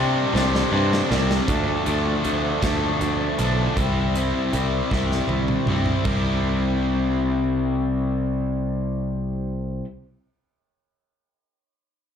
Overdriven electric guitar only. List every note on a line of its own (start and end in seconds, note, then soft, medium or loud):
0.00 0.32 C3 medium
0.00 0.33 G3 medium
0.00 0.33 C4 loud
0.00 0.34 D4 loud
0.33 0.71 C3 medium
0.33 0.71 G3 medium
0.33 0.72 C4 medium
0.33 0.73 D4 loud
0.72 1.09 C3 medium
0.72 1.09 G3 medium
0.72 1.10 C4 loud
0.72 1.10 D4 medium
1.10 1.46 C3 medium
1.10 1.46 G3 loud
1.10 1.46 C4 medium
1.10 1.46 D4 medium
1.47 1.84 D3 medium
1.47 1.85 F3 medium
1.47 1.86 A3 medium
1.47 1.87 D4 medium
1.85 2.23 D3 medium
1.85 2.23 F3 medium
1.85 2.24 A3 medium
1.85 2.25 D4 medium
2.24 2.60 D3 medium
2.24 2.61 F3 medium
2.24 2.61 A3 medium
2.24 2.63 D4 medium
2.62 3.37 D3 medium
2.62 3.38 F3 medium
2.62 3.38 A3 loud
2.62 3.40 D4 loud
3.38 3.74 D3 medium
3.38 3.74 F3 medium
3.38 3.75 A3 medium
3.38 3.77 D4 medium
3.76 4.13 C3 medium
3.76 4.14 G3 medium
3.76 4.15 C4 medium
3.76 4.15 E4 medium
4.15 4.52 C3 medium
4.15 4.52 G3 medium
4.15 4.53 C4 medium
4.15 4.54 E4 medium
4.53 4.90 C3 medium
4.53 4.91 G3 medium
4.53 4.92 C4 medium
4.53 4.92 E4 medium
4.91 5.66 C3 medium
4.91 5.67 G3 medium
4.91 5.68 C4 loud
4.91 5.68 E4 medium
5.68 6.03 C3 medium
5.68 6.03 G3 medium
5.68 6.04 C4 medium
5.68 6.04 E4 medium
6.05 9.84 C3 medium
6.05 9.84 G3 medium
6.05 9.85 C4 medium
6.05 9.85 E4 medium
6.05 9.86 G4 medium